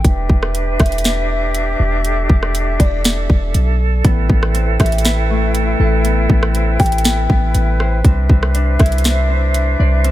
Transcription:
0.05 E1 D4 G4 B4 E5, kick, closed hi-hat
0.30 E1, kick
0.43 cross-stick
0.55 closed hi-hat
0.80 E1 E5, kick, cross-stick, closed hi-hat
0.86 closed hi-hat
0.92 closed hi-hat
0.98 closed hi-hat
1.04 snare, closed hi-hat
1.55 closed hi-hat
1.80 E1
2.05 A4, closed hi-hat
2.30 E1, kick
2.43 cross-stick
2.55 closed hi-hat
2.80 E1 D5, kick, closed hi-hat
3.04 snare, closed hi-hat
3.30 E1, kick
3.54 B1, closed hi-hat
4.04 A1 B3 E4 B4 G5, kick, closed hi-hat
4.29 A1 B3, kick
4.43 cross-stick
4.54 C4, closed hi-hat
4.80 A1 G4 E5, kick, cross-stick, closed hi-hat
4.86 closed hi-hat
4.92 closed hi-hat
4.98 closed hi-hat
5.05 B4, snare, closed hi-hat
5.30 A3
5.55 closed hi-hat
5.80 A1 A4
6.05 B3, closed hi-hat
6.30 A1 B3, kick
6.43 cross-stick
6.55 C4, closed hi-hat
6.79 A1 G4 G5, kick, closed hi-hat, open hi-hat
6.86 closed hi-hat
6.92 closed hi-hat
6.98 closed hi-hat
7.04 B3, snare, closed hi-hat
7.30 A1 B3, kick
7.55 A1, closed hi-hat
7.80 C5, cross-stick
8.05 C2 C4 D4 C5 E5, kick, closed hi-hat
8.29 C2 C4, kick
8.43 cross-stick
8.54 D4, closed hi-hat
8.79 C2 E4 E5, kick, cross-stick, closed hi-hat
8.86 closed hi-hat
8.92 closed hi-hat
8.98 closed hi-hat
9.04 C4, snare, closed hi-hat
9.29 C4
9.54 closed hi-hat
9.80 C2 D5
10.04 C4, closed hi-hat

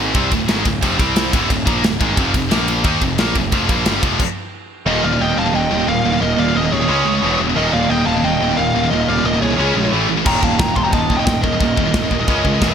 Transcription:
Already playing: G#1 G#2 D#3 G#3
0.14 C2 C3 G3 C4, kick, ride
0.32 D1 D2 A2, kick, ride
0.48 G#1 G#2 D#3 G#3, snare, ride
0.64 D1 D2 A2, kick, ride
0.82 F1 F2 C3 F3, kick, ride
0.99 C2 C3 G3 C4, kick, ride
1.16 snare, ride
1.33 D1 D2 A2 D3, kick, ride
1.49 D1 D2 A2, kick, ride
1.66 A#1 A#2 F3 A#3, kick, ride
1.83 D1 D2 A2, snare, ride
2.00 G#1 G#2 D#3 G#3, kick, ride
2.16 F1 F2 C3 F3, kick, ride
2.33 F1 F2 C3, kick, ride
2.51 A#1 A#2 F3 A#3, snare, ride
2.68 ride
2.84 D#2 D#3 A#3 D#4, kick, ride
3.01 F1 F2 C3, kick, ride
3.18 A#1 A#2 F3 A#3, snare, ride
3.35 F1 F2 C3, kick, ride
3.52 F1 F2 C3 F3, kick, ride
3.69 A#1 A#2 F3 A#3, kick, ride
3.85 G1 G2 D3 G3, snare, ride
4.02 F1 F2 C3 F3, kick, ride
4.20 kick, crash
4.86 D#1 D#2 A#2 D#3 A#4 D#5
5.03 D#1 D#2 A#2 D5 F5
5.13 D#2 A#2
5.20 D#1 D#2 A#2 D#5 G5
5.30 D#2 A#2
5.37 D#1 D#2 A#2 F5 A5
5.46 D#2 A#2
5.54 D#1 D#2 A#2 D#3 D#5 G5
5.70 D#1 D#2 A#2
5.80 D#2 A#2
5.87 D#1 D#2 A#2 A#4 F5
6.05 D#1 D#2 A#2
6.13 D#2 A#2
6.21 D#1 D#2 A#2 D#3 A#4 D#5
6.38 D#1 D#2 A#2 D5 F5
6.48 D#2 A#2
6.55 D#1 D#2 A#2 A#4 D#5
6.65 D#2 A#2
6.71 D#1 D#2 A#2 G#4 C#5
6.81 D#2 A#2
6.88 C#2 C#3 G#3 C#4
7.05 C#2 C#3 G#3
7.15 C#3 G#3
7.22 E1 E2 B2 E3
7.39 E1 E2 B2
7.49 E2 B2
7.56 D#1 D#2 A#2 D#3 A#4 D#5
7.72 D#1 D#2 A#2 D5 F5
7.83 D#2 A#2
7.89 D#1 D#2 A#2 D#5 G5
8.00 D#2 A#2
8.06 D#1 D#2 A#2 F5 A5
8.17 D#2 A#2
8.23 D#1 D#2 A#2 D#3 D#5 G5
8.41 D#1 D#2 A#2
8.51 D#2 A#2
8.57 D#1 D#2 A#2 A#4 F5
8.75 D#1 D#2 A#2
8.84 D#2 A#2
8.90 D#1 D#2 A#2 D#3 A#4 D#5
9.08 D#1 D#2 A#2 D5 F5
9.18 D#2 A#2
9.24 D#1 D#2 A#2 A#4 D#5
9.34 D#2 A#2
9.42 C2 D#2 A#2 G#4 C#5
9.51 D#2 A#2
9.58 C#2 C#3 G#3 C#4
9.75 A#1 C#3 G#3
9.85 C#3 G#3
9.93 A1 A2 E3 A3
10.09 A1 A2 E3
10.17 A2 E3
10.26 D#1 D#2 A#2 D#3 G5 A#5, kick, crash, china
10.42 D#1 D#2 A#2 F5 A5, kick
10.51 D#2 A#2
10.59 D#1 D#2 A#2 G5 A#5, kick, snare, china
10.68 D#2 A#2
10.76 D#1 D#2 A#2 A5 C6, kick
10.83 D#2 A#2 G5 A#5
10.92 D#1 D#2 A#2 D#3 D#5 A5, kick, china
11.10 D#1 D#2 A#2, kick
11.17 D#2 A#2 D#5 G5
11.25 D#1 D#2 A#2 D#5 G5, kick, snare, china
11.41 D#1 D#2 A#2 A#4 D#5, kick
11.53 D#2 A#2
11.60 D#1 D#2 A#2 D#3, kick, china
11.77 D#1 D#2 A#2, kick
11.86 D#2 A#2
11.94 D#1 D#2 A#2, kick, snare, china
12.04 D#2 A#2
12.11 D#1 D#2 A#2, kick
12.21 D#2 A#2
12.28 C#2 C#3 G#3 C#4, kick, china
12.44 C#2 C#3 G#3, kick
12.55 C#3 G#3
12.62 E1 E2 B2 E3, kick, snare, china

